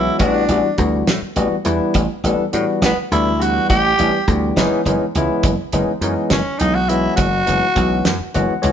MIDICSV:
0, 0, Header, 1, 6, 480
1, 0, Start_track
1, 0, Tempo, 582016
1, 167, Time_signature, 6, 3, 24, 8
1, 7194, End_track
2, 0, Start_track
2, 0, Title_t, "Tenor saxophone"
2, 0, Program_c, 0, 66
2, 0, Note_on_c, 0, 64, 95
2, 150, Note_off_c, 0, 64, 0
2, 155, Note_on_c, 0, 62, 90
2, 668, Note_off_c, 0, 62, 0
2, 2354, Note_on_c, 0, 59, 79
2, 2456, Note_off_c, 0, 59, 0
2, 2579, Note_on_c, 0, 64, 88
2, 2826, Note_on_c, 0, 66, 87
2, 2838, Note_off_c, 0, 64, 0
2, 3042, Note_off_c, 0, 66, 0
2, 3047, Note_on_c, 0, 67, 105
2, 3553, Note_off_c, 0, 67, 0
2, 5214, Note_on_c, 0, 61, 82
2, 5432, Note_on_c, 0, 63, 91
2, 5444, Note_off_c, 0, 61, 0
2, 5569, Note_on_c, 0, 66, 88
2, 5582, Note_off_c, 0, 63, 0
2, 5685, Note_on_c, 0, 64, 91
2, 5697, Note_off_c, 0, 66, 0
2, 5902, Note_off_c, 0, 64, 0
2, 5907, Note_on_c, 0, 66, 96
2, 6843, Note_off_c, 0, 66, 0
2, 7194, End_track
3, 0, Start_track
3, 0, Title_t, "Tine electric piano"
3, 0, Program_c, 1, 4
3, 0, Note_on_c, 1, 52, 65
3, 0, Note_on_c, 1, 56, 62
3, 0, Note_on_c, 1, 59, 61
3, 0, Note_on_c, 1, 61, 60
3, 0, Note_on_c, 1, 66, 72
3, 150, Note_off_c, 1, 52, 0
3, 152, Note_off_c, 1, 59, 0
3, 157, Note_off_c, 1, 66, 0
3, 160, Note_on_c, 1, 52, 73
3, 162, Note_on_c, 1, 59, 66
3, 165, Note_on_c, 1, 55, 68
3, 165, Note_on_c, 1, 62, 69
3, 167, Note_on_c, 1, 66, 84
3, 174, Note_off_c, 1, 56, 0
3, 174, Note_off_c, 1, 61, 0
3, 356, Note_off_c, 1, 52, 0
3, 357, Note_off_c, 1, 59, 0
3, 358, Note_off_c, 1, 55, 0
3, 358, Note_off_c, 1, 62, 0
3, 359, Note_off_c, 1, 66, 0
3, 404, Note_on_c, 1, 62, 60
3, 405, Note_on_c, 1, 59, 58
3, 406, Note_on_c, 1, 55, 58
3, 408, Note_on_c, 1, 52, 65
3, 411, Note_on_c, 1, 66, 69
3, 556, Note_off_c, 1, 59, 0
3, 556, Note_off_c, 1, 62, 0
3, 557, Note_off_c, 1, 55, 0
3, 558, Note_off_c, 1, 52, 0
3, 559, Note_off_c, 1, 66, 0
3, 639, Note_on_c, 1, 52, 62
3, 641, Note_on_c, 1, 55, 57
3, 646, Note_on_c, 1, 66, 64
3, 648, Note_on_c, 1, 59, 53
3, 648, Note_on_c, 1, 62, 54
3, 943, Note_off_c, 1, 52, 0
3, 944, Note_off_c, 1, 55, 0
3, 947, Note_off_c, 1, 66, 0
3, 948, Note_off_c, 1, 59, 0
3, 948, Note_off_c, 1, 62, 0
3, 1123, Note_on_c, 1, 52, 71
3, 1126, Note_on_c, 1, 55, 62
3, 1126, Note_on_c, 1, 59, 71
3, 1128, Note_on_c, 1, 62, 66
3, 1129, Note_on_c, 1, 66, 80
3, 1275, Note_off_c, 1, 52, 0
3, 1277, Note_off_c, 1, 55, 0
3, 1277, Note_off_c, 1, 59, 0
3, 1278, Note_off_c, 1, 62, 0
3, 1278, Note_off_c, 1, 66, 0
3, 1358, Note_on_c, 1, 52, 73
3, 1358, Note_on_c, 1, 59, 70
3, 1359, Note_on_c, 1, 55, 68
3, 1361, Note_on_c, 1, 64, 82
3, 1365, Note_on_c, 1, 62, 72
3, 1663, Note_off_c, 1, 52, 0
3, 1663, Note_off_c, 1, 55, 0
3, 1663, Note_off_c, 1, 59, 0
3, 1664, Note_off_c, 1, 64, 0
3, 1666, Note_off_c, 1, 62, 0
3, 1860, Note_on_c, 1, 59, 70
3, 1861, Note_on_c, 1, 52, 75
3, 1861, Note_on_c, 1, 69, 77
3, 1863, Note_on_c, 1, 55, 68
3, 1864, Note_on_c, 1, 62, 69
3, 2004, Note_off_c, 1, 52, 0
3, 2004, Note_off_c, 1, 59, 0
3, 2004, Note_off_c, 1, 69, 0
3, 2005, Note_off_c, 1, 55, 0
3, 2005, Note_off_c, 1, 62, 0
3, 2083, Note_on_c, 1, 52, 67
3, 2084, Note_on_c, 1, 55, 67
3, 2088, Note_on_c, 1, 66, 74
3, 2091, Note_on_c, 1, 59, 65
3, 2091, Note_on_c, 1, 62, 66
3, 2385, Note_off_c, 1, 52, 0
3, 2386, Note_off_c, 1, 55, 0
3, 2388, Note_off_c, 1, 66, 0
3, 2389, Note_off_c, 1, 59, 0
3, 2389, Note_off_c, 1, 62, 0
3, 2573, Note_on_c, 1, 52, 64
3, 2577, Note_on_c, 1, 59, 54
3, 2578, Note_on_c, 1, 55, 60
3, 2580, Note_on_c, 1, 64, 69
3, 2582, Note_on_c, 1, 62, 61
3, 2720, Note_off_c, 1, 52, 0
3, 2722, Note_off_c, 1, 59, 0
3, 2723, Note_off_c, 1, 55, 0
3, 2724, Note_off_c, 1, 64, 0
3, 2725, Note_off_c, 1, 62, 0
3, 2800, Note_on_c, 1, 52, 66
3, 2802, Note_on_c, 1, 59, 62
3, 2802, Note_on_c, 1, 66, 73
3, 2804, Note_on_c, 1, 55, 63
3, 2804, Note_on_c, 1, 62, 58
3, 3104, Note_off_c, 1, 52, 0
3, 3104, Note_off_c, 1, 59, 0
3, 3105, Note_off_c, 1, 55, 0
3, 3105, Note_off_c, 1, 66, 0
3, 3106, Note_off_c, 1, 62, 0
3, 3286, Note_on_c, 1, 52, 60
3, 3288, Note_on_c, 1, 55, 58
3, 3289, Note_on_c, 1, 59, 56
3, 3293, Note_on_c, 1, 62, 59
3, 3295, Note_on_c, 1, 67, 67
3, 3436, Note_off_c, 1, 52, 0
3, 3437, Note_off_c, 1, 55, 0
3, 3438, Note_off_c, 1, 59, 0
3, 3440, Note_off_c, 1, 62, 0
3, 3441, Note_off_c, 1, 67, 0
3, 3534, Note_on_c, 1, 55, 55
3, 3534, Note_on_c, 1, 62, 57
3, 3536, Note_on_c, 1, 52, 61
3, 3541, Note_on_c, 1, 59, 58
3, 3541, Note_on_c, 1, 67, 67
3, 3756, Note_off_c, 1, 52, 0
3, 3761, Note_off_c, 1, 59, 0
3, 3766, Note_on_c, 1, 52, 89
3, 3767, Note_on_c, 1, 56, 79
3, 3770, Note_off_c, 1, 55, 0
3, 3770, Note_off_c, 1, 62, 0
3, 3771, Note_on_c, 1, 59, 81
3, 3774, Note_off_c, 1, 67, 0
3, 3774, Note_on_c, 1, 61, 82
3, 3775, Note_on_c, 1, 63, 100
3, 3958, Note_off_c, 1, 52, 0
3, 3959, Note_off_c, 1, 56, 0
3, 3961, Note_off_c, 1, 59, 0
3, 3962, Note_off_c, 1, 61, 0
3, 3963, Note_off_c, 1, 63, 0
3, 4010, Note_on_c, 1, 59, 66
3, 4011, Note_on_c, 1, 52, 75
3, 4012, Note_on_c, 1, 61, 73
3, 4013, Note_on_c, 1, 56, 68
3, 4014, Note_on_c, 1, 63, 80
3, 4158, Note_off_c, 1, 59, 0
3, 4159, Note_off_c, 1, 52, 0
3, 4159, Note_off_c, 1, 61, 0
3, 4160, Note_off_c, 1, 56, 0
3, 4160, Note_off_c, 1, 63, 0
3, 4260, Note_on_c, 1, 52, 80
3, 4260, Note_on_c, 1, 56, 72
3, 4262, Note_on_c, 1, 61, 72
3, 4264, Note_on_c, 1, 64, 88
3, 4265, Note_on_c, 1, 59, 76
3, 4553, Note_off_c, 1, 52, 0
3, 4553, Note_off_c, 1, 56, 0
3, 4554, Note_off_c, 1, 61, 0
3, 4556, Note_off_c, 1, 59, 0
3, 4556, Note_off_c, 1, 64, 0
3, 4725, Note_on_c, 1, 52, 77
3, 4725, Note_on_c, 1, 56, 69
3, 4725, Note_on_c, 1, 63, 83
3, 4728, Note_on_c, 1, 59, 73
3, 4730, Note_on_c, 1, 61, 71
3, 4876, Note_off_c, 1, 52, 0
3, 4876, Note_off_c, 1, 56, 0
3, 4876, Note_off_c, 1, 63, 0
3, 4877, Note_off_c, 1, 59, 0
3, 4878, Note_off_c, 1, 61, 0
3, 4971, Note_on_c, 1, 52, 74
3, 4975, Note_on_c, 1, 61, 68
3, 4978, Note_on_c, 1, 59, 67
3, 4979, Note_on_c, 1, 56, 66
3, 4979, Note_on_c, 1, 63, 83
3, 5269, Note_off_c, 1, 52, 0
3, 5271, Note_off_c, 1, 61, 0
3, 5272, Note_off_c, 1, 59, 0
3, 5272, Note_off_c, 1, 63, 0
3, 5273, Note_off_c, 1, 56, 0
3, 5448, Note_on_c, 1, 52, 63
3, 5449, Note_on_c, 1, 59, 57
3, 5450, Note_on_c, 1, 56, 60
3, 5454, Note_on_c, 1, 63, 67
3, 5455, Note_on_c, 1, 61, 58
3, 5597, Note_off_c, 1, 52, 0
3, 5598, Note_off_c, 1, 56, 0
3, 5598, Note_off_c, 1, 59, 0
3, 5600, Note_off_c, 1, 63, 0
3, 5601, Note_off_c, 1, 61, 0
3, 5686, Note_on_c, 1, 52, 65
3, 5687, Note_on_c, 1, 56, 60
3, 5689, Note_on_c, 1, 59, 64
3, 5692, Note_on_c, 1, 61, 63
3, 5693, Note_on_c, 1, 66, 69
3, 5986, Note_off_c, 1, 52, 0
3, 5987, Note_off_c, 1, 56, 0
3, 5987, Note_off_c, 1, 59, 0
3, 5989, Note_off_c, 1, 61, 0
3, 5989, Note_off_c, 1, 66, 0
3, 6153, Note_on_c, 1, 56, 58
3, 6155, Note_on_c, 1, 52, 62
3, 6158, Note_on_c, 1, 61, 61
3, 6159, Note_on_c, 1, 59, 56
3, 6159, Note_on_c, 1, 63, 70
3, 6309, Note_off_c, 1, 56, 0
3, 6310, Note_off_c, 1, 52, 0
3, 6312, Note_off_c, 1, 59, 0
3, 6312, Note_off_c, 1, 61, 0
3, 6312, Note_off_c, 1, 63, 0
3, 6389, Note_on_c, 1, 56, 53
3, 6391, Note_on_c, 1, 52, 63
3, 6395, Note_on_c, 1, 59, 58
3, 6397, Note_on_c, 1, 61, 55
3, 6398, Note_on_c, 1, 66, 71
3, 6697, Note_off_c, 1, 56, 0
3, 6699, Note_off_c, 1, 52, 0
3, 6700, Note_off_c, 1, 59, 0
3, 6701, Note_off_c, 1, 61, 0
3, 6702, Note_off_c, 1, 66, 0
3, 6879, Note_on_c, 1, 52, 74
3, 6881, Note_on_c, 1, 59, 65
3, 6884, Note_on_c, 1, 66, 87
3, 6886, Note_on_c, 1, 56, 72
3, 6886, Note_on_c, 1, 61, 66
3, 6886, Note_on_c, 1, 78, 68
3, 7032, Note_off_c, 1, 52, 0
3, 7033, Note_off_c, 1, 59, 0
3, 7035, Note_off_c, 1, 56, 0
3, 7035, Note_off_c, 1, 66, 0
3, 7036, Note_off_c, 1, 61, 0
3, 7109, Note_off_c, 1, 78, 0
3, 7109, Note_on_c, 1, 59, 69
3, 7110, Note_on_c, 1, 73, 66
3, 7112, Note_on_c, 1, 56, 75
3, 7115, Note_on_c, 1, 52, 82
3, 7115, Note_on_c, 1, 61, 73
3, 7115, Note_on_c, 1, 66, 86
3, 7194, Note_off_c, 1, 52, 0
3, 7194, Note_off_c, 1, 56, 0
3, 7194, Note_off_c, 1, 59, 0
3, 7194, Note_off_c, 1, 61, 0
3, 7194, Note_off_c, 1, 66, 0
3, 7194, Note_off_c, 1, 73, 0
3, 7194, End_track
4, 0, Start_track
4, 0, Title_t, "Slap bass"
4, 0, Program_c, 2, 36
4, 164, Note_on_c, 2, 33, 89
4, 357, Note_off_c, 2, 33, 0
4, 400, Note_on_c, 2, 33, 84
4, 498, Note_off_c, 2, 33, 0
4, 647, Note_on_c, 2, 38, 88
4, 838, Note_off_c, 2, 38, 0
4, 887, Note_on_c, 2, 45, 94
4, 983, Note_off_c, 2, 45, 0
4, 1123, Note_on_c, 2, 33, 77
4, 1221, Note_off_c, 2, 33, 0
4, 1365, Note_on_c, 2, 40, 79
4, 1462, Note_off_c, 2, 40, 0
4, 1607, Note_on_c, 2, 33, 93
4, 1703, Note_off_c, 2, 33, 0
4, 1844, Note_on_c, 2, 33, 82
4, 1941, Note_off_c, 2, 33, 0
4, 2092, Note_on_c, 2, 45, 87
4, 2186, Note_off_c, 2, 45, 0
4, 2323, Note_on_c, 2, 33, 89
4, 2420, Note_off_c, 2, 33, 0
4, 2569, Note_on_c, 2, 38, 76
4, 2951, Note_off_c, 2, 38, 0
4, 3047, Note_on_c, 2, 33, 90
4, 3239, Note_off_c, 2, 33, 0
4, 3294, Note_on_c, 2, 33, 91
4, 3387, Note_off_c, 2, 33, 0
4, 3526, Note_on_c, 2, 38, 99
4, 3718, Note_off_c, 2, 38, 0
4, 3762, Note_on_c, 2, 30, 96
4, 3860, Note_off_c, 2, 30, 0
4, 4003, Note_on_c, 2, 30, 82
4, 4100, Note_off_c, 2, 30, 0
4, 4249, Note_on_c, 2, 37, 86
4, 4344, Note_off_c, 2, 37, 0
4, 4484, Note_on_c, 2, 30, 97
4, 4581, Note_off_c, 2, 30, 0
4, 4725, Note_on_c, 2, 30, 80
4, 4821, Note_off_c, 2, 30, 0
4, 4959, Note_on_c, 2, 42, 89
4, 5057, Note_off_c, 2, 42, 0
4, 5199, Note_on_c, 2, 30, 90
4, 5297, Note_off_c, 2, 30, 0
4, 5447, Note_on_c, 2, 35, 82
4, 5829, Note_off_c, 2, 35, 0
4, 5920, Note_on_c, 2, 30, 90
4, 6113, Note_off_c, 2, 30, 0
4, 6170, Note_on_c, 2, 30, 89
4, 6264, Note_off_c, 2, 30, 0
4, 6405, Note_on_c, 2, 35, 98
4, 6596, Note_off_c, 2, 35, 0
4, 6644, Note_on_c, 2, 42, 97
4, 6740, Note_off_c, 2, 42, 0
4, 6887, Note_on_c, 2, 30, 82
4, 6982, Note_off_c, 2, 30, 0
4, 7123, Note_on_c, 2, 37, 86
4, 7194, Note_off_c, 2, 37, 0
4, 7194, End_track
5, 0, Start_track
5, 0, Title_t, "Muted slap bass strokes"
5, 1007, Note_on_c, 9, 29, 34
5, 1089, Note_off_c, 9, 29, 0
5, 1254, Note_on_c, 9, 29, 33
5, 1336, Note_off_c, 9, 29, 0
5, 1489, Note_on_c, 9, 29, 35
5, 1572, Note_off_c, 9, 29, 0
5, 1976, Note_on_c, 9, 29, 35
5, 2059, Note_off_c, 9, 29, 0
5, 3886, Note_on_c, 9, 29, 36
5, 3968, Note_off_c, 9, 29, 0
5, 4372, Note_on_c, 9, 29, 37
5, 4455, Note_off_c, 9, 29, 0
5, 4844, Note_on_c, 9, 29, 36
5, 4927, Note_off_c, 9, 29, 0
5, 5323, Note_on_c, 9, 29, 35
5, 5406, Note_off_c, 9, 29, 0
5, 6766, Note_on_c, 9, 29, 35
5, 6848, Note_off_c, 9, 29, 0
5, 7008, Note_on_c, 9, 29, 35
5, 7091, Note_off_c, 9, 29, 0
5, 7194, End_track
6, 0, Start_track
6, 0, Title_t, "Drums"
6, 161, Note_on_c, 9, 42, 76
6, 165, Note_on_c, 9, 36, 109
6, 243, Note_off_c, 9, 42, 0
6, 247, Note_off_c, 9, 36, 0
6, 402, Note_on_c, 9, 42, 64
6, 484, Note_off_c, 9, 42, 0
6, 643, Note_on_c, 9, 42, 58
6, 646, Note_on_c, 9, 36, 75
6, 725, Note_off_c, 9, 42, 0
6, 729, Note_off_c, 9, 36, 0
6, 886, Note_on_c, 9, 38, 105
6, 886, Note_on_c, 9, 42, 83
6, 969, Note_off_c, 9, 38, 0
6, 969, Note_off_c, 9, 42, 0
6, 1121, Note_on_c, 9, 42, 56
6, 1204, Note_off_c, 9, 42, 0
6, 1360, Note_on_c, 9, 42, 64
6, 1442, Note_off_c, 9, 42, 0
6, 1601, Note_on_c, 9, 42, 86
6, 1608, Note_on_c, 9, 36, 111
6, 1683, Note_off_c, 9, 42, 0
6, 1690, Note_off_c, 9, 36, 0
6, 1852, Note_on_c, 9, 42, 61
6, 1935, Note_off_c, 9, 42, 0
6, 2088, Note_on_c, 9, 42, 58
6, 2170, Note_off_c, 9, 42, 0
6, 2329, Note_on_c, 9, 38, 108
6, 2329, Note_on_c, 9, 42, 81
6, 2411, Note_off_c, 9, 38, 0
6, 2411, Note_off_c, 9, 42, 0
6, 2574, Note_on_c, 9, 42, 60
6, 2656, Note_off_c, 9, 42, 0
6, 2817, Note_on_c, 9, 42, 58
6, 2899, Note_off_c, 9, 42, 0
6, 3050, Note_on_c, 9, 36, 110
6, 3052, Note_on_c, 9, 42, 73
6, 3133, Note_off_c, 9, 36, 0
6, 3134, Note_off_c, 9, 42, 0
6, 3289, Note_on_c, 9, 42, 58
6, 3371, Note_off_c, 9, 42, 0
6, 3529, Note_on_c, 9, 36, 78
6, 3534, Note_on_c, 9, 42, 59
6, 3612, Note_off_c, 9, 36, 0
6, 3616, Note_off_c, 9, 42, 0
6, 3770, Note_on_c, 9, 38, 100
6, 3770, Note_on_c, 9, 42, 72
6, 3852, Note_off_c, 9, 38, 0
6, 3852, Note_off_c, 9, 42, 0
6, 4010, Note_on_c, 9, 42, 57
6, 4093, Note_off_c, 9, 42, 0
6, 4247, Note_on_c, 9, 42, 59
6, 4330, Note_off_c, 9, 42, 0
6, 4480, Note_on_c, 9, 42, 86
6, 4483, Note_on_c, 9, 36, 109
6, 4562, Note_off_c, 9, 42, 0
6, 4566, Note_off_c, 9, 36, 0
6, 4721, Note_on_c, 9, 42, 60
6, 4804, Note_off_c, 9, 42, 0
6, 4963, Note_on_c, 9, 42, 62
6, 5045, Note_off_c, 9, 42, 0
6, 5197, Note_on_c, 9, 38, 100
6, 5197, Note_on_c, 9, 42, 81
6, 5279, Note_off_c, 9, 38, 0
6, 5279, Note_off_c, 9, 42, 0
6, 5440, Note_on_c, 9, 42, 62
6, 5523, Note_off_c, 9, 42, 0
6, 5686, Note_on_c, 9, 42, 63
6, 5768, Note_off_c, 9, 42, 0
6, 5914, Note_on_c, 9, 42, 86
6, 5921, Note_on_c, 9, 36, 109
6, 5996, Note_off_c, 9, 42, 0
6, 6004, Note_off_c, 9, 36, 0
6, 6162, Note_on_c, 9, 42, 62
6, 6245, Note_off_c, 9, 42, 0
6, 6399, Note_on_c, 9, 42, 59
6, 6402, Note_on_c, 9, 36, 76
6, 6482, Note_off_c, 9, 42, 0
6, 6484, Note_off_c, 9, 36, 0
6, 6640, Note_on_c, 9, 38, 105
6, 6640, Note_on_c, 9, 42, 76
6, 6722, Note_off_c, 9, 38, 0
6, 6722, Note_off_c, 9, 42, 0
6, 6882, Note_on_c, 9, 42, 59
6, 6965, Note_off_c, 9, 42, 0
6, 7117, Note_on_c, 9, 42, 59
6, 7194, Note_off_c, 9, 42, 0
6, 7194, End_track
0, 0, End_of_file